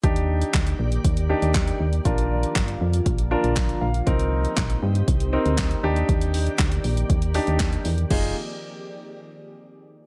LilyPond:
<<
  \new Staff \with { instrumentName = "Grand piano" } { \time 4/4 \key ees \major \tempo 4 = 119 <d' ees' g'>4. r4 <d' ees' g'>4 r8 | <d' f' bes'>4. r4 <d' f' bes'>4 f''8 | <c' ees' bes'>4. r4 <c' ees' bes'>4 <d' ees' g'>8~ | <d' ees' g'>4 r4. <d' ees' g'>4 r8 |
<ees' f' aes'>8 r2. r8 | }
  \new Staff \with { instrumentName = "Ambient pad" } { \time 4/4 \key ees \major <ees bes g' d''>1 | <d f bes f'>1 | <c' ees' g'>2.~ <c' ees' g'>8 <ees bes g' d''>8~ | <ees bes g' d''>1 |
r1 | }
  \new Staff \with { instrumentName = "FM bass" } { \clef bass \time 4/4 \key ees \major ees,4 d,8 bes,,8 ees,8. ees,8. ees,8 | bes,,4 g,,8 f,8 bes,,8. bes,,8. bes,,8 | c,4 bes,,8 g,8 c,8. d,8. ees,8 | ees,4 d,8 bes,,8 ees,8. ees,8. e,8 |
f,,8 r2. r8 | }
  \new DrumStaff \with { instrumentName = "Drums" } \drummode { \time 4/4 <hh bd>16 hh8 hh16 <hc hh bd sn>16 hh8 hh16 <hh bd>16 hh8 hh16 <hc hh bd sn>16 hh8 hh16 | <hh bd>16 hh8 hh16 <hc hh bd sn>16 hh8 hh16 <hh bd>16 hh8 hh16 <hc hh bd sn>16 hh8 hh16 | <hh bd>16 hh8 hh16 <hc hh bd sn>16 hh8 hh16 <hh bd>16 hh8 hh16 <hc hh bd sn>16 hh8 hh16 | <hh bd>16 hh16 hho16 hh16 <hc hh bd sn>16 hh16 hho16 hh16 <hh bd>16 hh16 hho16 hh16 <hc hh bd sn>16 hh16 hho16 hh16 |
<cymc bd>4 r4 r4 r4 | }
>>